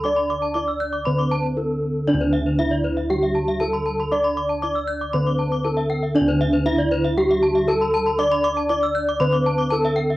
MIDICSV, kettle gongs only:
0, 0, Header, 1, 2, 480
1, 0, Start_track
1, 0, Tempo, 508475
1, 49, Time_signature, 4, 2, 24, 8
1, 9600, End_track
2, 0, Start_track
2, 0, Title_t, "Kettle gongs"
2, 0, Program_c, 0, 14
2, 0, Note_on_c, 0, 38, 107
2, 50, Note_on_c, 0, 74, 87
2, 521, Note_on_c, 0, 64, 63
2, 597, Note_off_c, 0, 64, 0
2, 995, Note_off_c, 0, 38, 0
2, 1008, Note_on_c, 0, 50, 76
2, 1452, Note_off_c, 0, 74, 0
2, 1485, Note_on_c, 0, 64, 41
2, 1560, Note_off_c, 0, 64, 0
2, 1968, Note_on_c, 0, 62, 95
2, 2016, Note_on_c, 0, 38, 127
2, 2411, Note_off_c, 0, 50, 0
2, 2451, Note_on_c, 0, 64, 59
2, 2526, Note_off_c, 0, 64, 0
2, 3370, Note_off_c, 0, 62, 0
2, 3410, Note_on_c, 0, 64, 47
2, 3486, Note_off_c, 0, 64, 0
2, 3889, Note_on_c, 0, 74, 92
2, 4375, Note_on_c, 0, 64, 54
2, 4450, Note_off_c, 0, 64, 0
2, 4835, Note_off_c, 0, 38, 0
2, 4853, Note_on_c, 0, 50, 78
2, 5291, Note_off_c, 0, 74, 0
2, 5337, Note_on_c, 0, 64, 43
2, 5413, Note_off_c, 0, 64, 0
2, 5810, Note_on_c, 0, 62, 91
2, 5855, Note_on_c, 0, 38, 118
2, 6253, Note_off_c, 0, 50, 0
2, 6292, Note_on_c, 0, 64, 55
2, 6367, Note_off_c, 0, 64, 0
2, 7212, Note_off_c, 0, 62, 0
2, 7254, Note_on_c, 0, 64, 45
2, 7329, Note_off_c, 0, 64, 0
2, 7730, Note_on_c, 0, 74, 93
2, 8209, Note_on_c, 0, 64, 56
2, 8285, Note_off_c, 0, 64, 0
2, 8674, Note_off_c, 0, 38, 0
2, 8686, Note_on_c, 0, 50, 83
2, 9131, Note_off_c, 0, 74, 0
2, 9173, Note_on_c, 0, 64, 49
2, 9249, Note_off_c, 0, 64, 0
2, 9600, Note_off_c, 0, 50, 0
2, 9600, End_track
0, 0, End_of_file